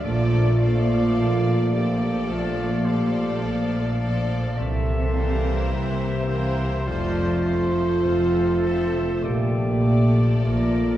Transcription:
Already playing: A3 D4 F4 A4
0.02 A#1 A#2 F3 A3 F4 A4 D5
0.32 A3
0.59 F3 F4 A4 D5 F5
0.89 D5
1.16 A#1 A#2 A#3 A4 D5
1.73 F3 A#3 G4 A4 D5
2.01 F3
2.29 A#1 A#2 A3 F4 D5 F5
2.58 F3
2.85 F3 G3 F4 A4 C5 D5
3.41 A#1 A#2 F3 A4 D5
3.71 D5
3.98 F3 A4 D5
4.29 F3
4.56 C2 C3 E3 A3 A#3 A4 C5 E5
4.84 A#3
5.13 E3 G3 A#4 C5 F5
5.70 C2 C3 C4 G4 A#4 E5
5.99 C5
6.29 E3 A#3 A#4 C5
6.57 G3
6.87 F1 F2 F3 A3 F4 A4 C5 D5 F5
7.16 A3
7.45 F3 F4 A4 C5
8.04 F1 F2 C4 A4 F5
8.34 C5
8.64 F3 A4 C5 E5
8.92 C3
9.22 A#1 A#2 A#3 G4 D5
9.52 A3
9.81 F3 A3 A4 D5
10.42 A#1 A#2 A3 F4 A4 A#4 D5

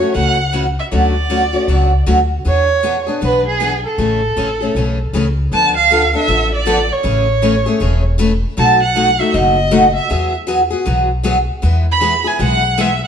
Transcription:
Already playing: C#5
0.00 A3 C#4 F#4
0.14 C#2 C#3 E3 A3 C#4 F#4 F#5
0.53 C#3 E3 A3 C#4 F#4
0.80 E5
0.92 D2 D3 F#3 A3 C#4 F#4 D5
1.29 D3 F#3 A3 C#4 F#4
1.53 A3 C#4 F#4
1.68 C#2 D3 F#3 A3 C#4 F#4
2.06 D2 D3 F#3 A3 C#4 F#4
2.45 E2 E3 B3 D4 G#4 C#5
2.83 E3 B3 D4 G#4
3.07 B3 D4 G#4
3.21 B1 E3 B3 D4 G#4 B4
3.48 G#4
3.60 E3 B3 D4 G#4
3.87 A4
3.98 A1 C#3 E3 A3 C#4 G#4
4.37 A1 C#3 E3 A3 C#4 G#4
4.61 A3 C#4 G#4
4.75 B1 C#3 E3 A3 C#4 G#4
5.13 C#2 C#3 E3 A3 C#4 G#4
5.51 D2 D3 F3 B3 D4 A4 A5
5.77 F5
5.90 D3 F3 B3 D4 A4
6.13 B3 D4 A4 E5
6.28 A1 D3 F3 B3 D4 A4
6.55 D5
6.66 D3 F3 B3 D4 A4
6.93 C#5
7.03 A1 C#3 E3 A3 C#4 G#4
7.42 C#3 E3 A3 C#4 G#4
7.66 A3 C#4 G#4
7.80 E1 C#3 E3 A3 C#4 G#4
8.18 C#3 E3 A3 C#4 G#4
8.57 B1 B2 F#3 A3 D#4 F#4 A5
8.83 F#5
8.95 B2 F#3 A3 D#4 F#4
9.19 A3 D#4 F#4 E5
9.33 F#1 B2 F#3 A3 D#4 F#4 D#5
9.71 B2 F#3 A3 D#4 F#4
9.96 E5
10.09 E2 E3 F#3 B3 F#4 G#4
10.47 E3 F#3 B3 F#4 G#4
10.70 B3 F#4 G#4
10.85 B1 E3 F#3 B3 F#4 G#4
11.23 E3 F#3 B3 F#4 G#4
11.62 E2 E3 G#3 B3 E4 G#4
11.92 B5
12.00 E3 G#3 B3 E4 G#4
12.24 B3 E4 G#4 G#5
12.39 B1 E3 G#3 B3 E4 G#4 F#5
12.78 E3 G#3 B3 E4 G#4 E5

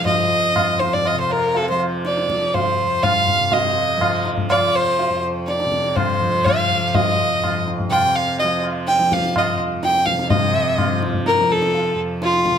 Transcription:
Already playing: F2 C3
0.00 F3
0.05 D#5, tabla tin, tabla ge
0.56 F2, tabla na, tabla ge
0.80 C5, tabla te
0.93 D5, tabla ge
1.05 D#5, tabla na
1.14 C3
1.20 C5
1.30 A#4, tabla na
1.55 A4, tabla tin
1.70 F3 C5
1.80 tabla na
2.05 D5, tabla te
2.17 tabla te
2.29 F3, tabla ke
2.42 tabla te
2.54 C5, tabla tin, tabla ge
2.84 F2
3.03 F5, tabla na, tabla ge
3.28 tabla ge
3.39 C3
3.52 D#5, tabla tin, tabla ge
3.97 F3
4.01 tabla na, tabla ge
4.25 tabla te
4.38 tabla ge
4.50 F3 D5, tabla na
4.75 C5
4.99 tabla tin
5.09 F2
5.48 D5, tabla te
5.60 tabla te
5.65 C3
5.72 tabla ke
5.84 tabla te
5.96 C5, tabla na, tabla ge
6.21 F3, tabla ge
6.45 F5, tabla na, tabla ge
6.70 tabla ge
6.77 F3
6.87 F5
6.94 D#5, tabla tin, tabla ge
7.34 F2
7.44 tabla na, tabla ge
7.68 tabla te
7.80 tabla ge
7.89 C3 G5, tabla na
8.16 F5
8.40 D#5, tabla tin
8.44 F3
8.64 tabla na
8.88 G5, tabla te
8.99 F3, tabla te
9.12 F5, tabla ke
9.24 tabla te
9.36 D#5, tabla na, tabla ge
9.53 F2
9.59 tabla ge
9.83 G5, tabla te
9.95 tabla te
10.06 C3 F5, tabla ke
10.19 tabla te
10.30 C3 D#5, tabla tin, tabla ge
10.78 tabla na, tabla ge
10.87 F3
11.02 tabla te
11.13 tabla ge
11.26 A#4, tabla te
11.38 F3, tabla te
11.50 A4, tabla ke
11.62 tabla te
11.74 tabla tin
11.95 F2
12.22 F4, tabla te
12.34 tabla te
12.46 tabla ke
12.50 C3

